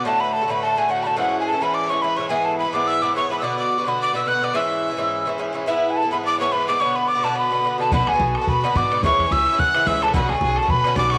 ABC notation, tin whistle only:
X:1
M:4/4
L:1/16
Q:"Swing" 1/4=214
K:Bdor
V:1 name="Tin whistle"
a2 b2 a2 b2 a2 g2 f3/2 b/2 a2 | f3 g a2 b2 d'2 c'2 b2 c'2 | g2 a2 b2 d'2 e'2 d'2 c'2 b3/2 e'/2 | d'2 d'4 b2 d'2 e'2 f'2 d'2 |
e'8- e'2 z6 | e3 g a2 b2 d'2 c'2 b2 d'2 | c'2 b2 d'2 a2 b6 a2 | b2 g4 a2 b4 d'4 |
c'4 e'4 f'4 e'2 a2 | b2 g4 a2 b4 d'2 c'2 |]